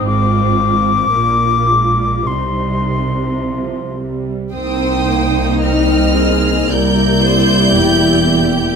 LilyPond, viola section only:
\new Staff \with { instrumentName = "Viola section" } { \time 4/4 \key c \minor \tempo 4 = 55 << { f'4 f'4 ees'4 f8 g8 | ees'2 e'2 | } \\ { c'4 bes8 aes8 g4 r4 | c'8 bes8 c'4 g2 | } >> }